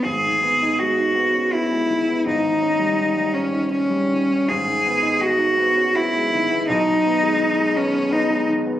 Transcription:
<<
  \new Staff \with { instrumentName = "Cello" } { \time 3/4 \key gis \minor \tempo 4 = 82 gis'4 fis'4 e'4 | dis'4. cis'8 cis'4 | gis'4 fis'4 e'4 | dis'4. cis'8 dis'8 r8 | }
  \new Staff \with { instrumentName = "Grand piano" } { \time 3/4 \key gis \minor gis,,16 dis16 b16 dis'16 gis16 dis'16 b16 cis'16 b16 gis16 dis16 b16 | gis,,16 dis16 cis'16 g16 dis16 g16 cis'16 dis'16 cis'16 g16 dis16 cis'16 | gis,,16 dis16 b16 dis'16 gis16 dis'16 b16 cis'16 b16 gis16 dis16 b16 | b,,16 dis16 b16 gis16 dis16 gis16 b16 cis'16 b16 gis16 dis16 b16 | }
>>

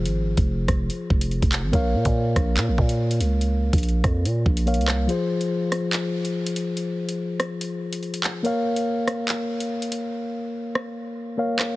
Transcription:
<<
  \new Staff \with { instrumentName = "Tine electric piano" } { \time 4/4 \key bes \dorian \tempo 4 = 143 <f f' aes' c''>1 | <bes bes' des'' f''>1~ | <bes bes' des'' f''>2. <bes bes' des'' f''>4 | <f f' aes' c''>1~ |
<f f' aes' c''>1 | <bes bes' des'' f''>1~ | <bes bes' des'' f''>2. <bes bes' des'' f''>4 | }
  \new Staff \with { instrumentName = "808-style bass" } { \clef bass \time 4/4 \key bes \dorian aes,,8. f,,8. f,,8 r8 f,,8. f,,8 aes,,16 | bes,,8 bes,16 bes,8. bes,,8 bes,16 bes,,16 bes,4 des,8~ | des,8. bes,,8. f,8 bes,8 bes,,8. c,8. | r1 |
r1 | r1 | r1 | }
  \new DrumStaff \with { instrumentName = "Drums" } \drummode { \time 4/4 hh8. <hh bd>16 r8 <hh bd ss>8 hh8 bd16 hh16 hh16 <hh bd>16 <hc hh>8 | <hh bd>8. <hh bd>16 r8 <hh bd ss>8 <hc hh>8 bd16 hh16 r16 hh16 hh8 | hh8. <hh bd>32 hh32 hh32 hh16. <hh bd ss>8 hh8 bd16 hh16 \tuplet 3/2 { hh16 hh16 hh16 <hc hh ss>16 r16 r16 } | hh8. hh16 r8 <hh ss>8 <hc hh>8. hh16 r16 hh16 hh8 |
hh8. hh16 r8 <hh ss>8 hh8. hh16 hh16 hh16 <hc hh>8 | hh8. hh16 r8 <hh ss>8 <hc hh>8. hh16 r16 hh16 hh8 | r4 r8 ss8 r4 r8 <hc ss>8 | }
>>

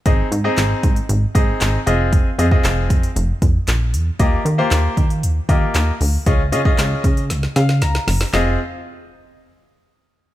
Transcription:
<<
  \new Staff \with { instrumentName = "Grand piano" } { \time 4/4 \key f \minor \tempo 4 = 116 <c' ees' aes' ees''>8 r16 <c' ees' aes' ees''>4 r8. <c' ees' aes' ees''>8. r16 <c' f' aes' ees''>8~ | <c' f' aes' ees''>16 r16 <c' f' aes' ees''>16 <c' f' aes' ees''>4 r2 r16 | <bes f' g' ees''>8 r16 <bes f' g' c''>4 r8. <bes f' g' ees''>8. r8. | <des' f' aes' ees''>16 r16 <des' f' aes' ees''>16 <des' f' aes' ees''>4 r8. f''8 bes''4 |
<c' f' aes' ees''>8 r2. r8 | }
  \new Staff \with { instrumentName = "Analog synth bass" } { \clef bass \time 4/4 \key f \minor aes,,8 aes,8 aes,,8 aes,8 aes,,8 aes,8 aes,,8 f,,8~ | f,,8 f,8 f,,8 f,8 f,,8 f,8 bes,,8 e,8 | ees,8 ees8 ees,8 ees8 ees,8 ees8 ees,8 d,8 | des,8 des8 des,8 des8 des,8 des8 des,8 ges,,8 |
f,,8 r2. r8 | }
  \new DrumStaff \with { instrumentName = "Drums" } \drummode { \time 4/4 <hh bd>8 hh8 <hc hh sn>8 <hh bd>16 hh16 hh8 <hh bd>8 <hc hh sn>8 hh8 | <hh bd>8 hh16 bd16 <hc hh sn>8 <hh bd>16 hh16 hh8 <hh bd>8 <hc hh sn>8 hh8 | <hh bd>8 hh8 <hc hh sn>8 <hh bd>16 hh16 hh8 <hh bd>8 <hc hh sn>8 hho8 | <hh bd>8 hh16 bd16 <hc hh sn>8 <hh bd>16 hh16 <hh sn>16 sn16 <hh sn>16 sn16 <hh sn>16 sn16 <hho sn>16 sn16 |
<hc sn>4 r4 r4 r4 | }
>>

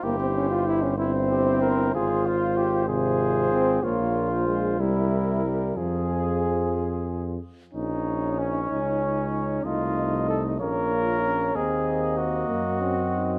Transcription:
<<
  \new Staff \with { instrumentName = "Trumpet" } { \time 6/8 \key f \minor \tempo 4. = 63 c''4. c''4. | c''4. c''4. | des''8. c''8. bes'4. | aes'2~ aes'8 r8 |
\key bes \minor ees'4 des'2 | f'4 a'8 bes'4. | aes'4 ges'2 | }
  \new Staff \with { instrumentName = "Cornet" } { \time 6/8 \key f \minor g'4. e'8 g'8 bes'8 | aes'8 f'8 g'8 aes'4. | f'4. e'4 r8 | aes'2~ aes'16 r8. |
\key bes \minor des''2. | ees''4. des''4. | ees''2. | }
  \new Staff \with { instrumentName = "French horn" } { \time 6/8 \key f \minor e'4. e'4. | f'4. f'4. | f'4. e'4. | f'2~ f'8 r8 |
\key bes \minor des'2. | a4. bes4. | bes2 c'4 | }
  \new Staff \with { instrumentName = "Trombone" } { \time 6/8 \key f \minor bes16 c'16 des'16 f'16 e'16 des'16 c'4. | f'4. c4 c'8 | bes4 aes8 g4 g8 | f4. r4. |
\key bes \minor ees'2.~ | ees'4. des'8 f'8 des'8 | c'4. bes8 des'8 ees'8 | }
  \new Staff \with { instrumentName = "Tuba" } { \clef bass \time 6/8 \key f \minor g,,2. | aes,,2. | bes,,4. c,4. | f,2~ f,8 r8 |
\key bes \minor bes,,4. des,4. | c,4. bes,,4. | ees,4. ges,4. | }
>>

